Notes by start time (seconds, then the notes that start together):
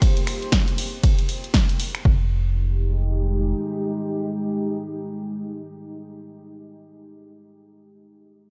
0.02 kick, closed hi-hat, ride
0.17 closed hi-hat
0.27 finger snap, open hi-hat
0.42 closed hi-hat
0.52 kick, snare, closed hi-hat, ride
0.68 closed hi-hat
0.78 open hi-hat
1.03 kick, closed hi-hat, ride
1.19 closed hi-hat
1.29 open hi-hat
1.44 closed hi-hat
1.54 kick, snare, closed hi-hat, ride
1.69 closed hi-hat
1.80 open hi-hat
1.95 finger snap, closed hi-hat
2.05 F1 G#3 D#4 G4, kick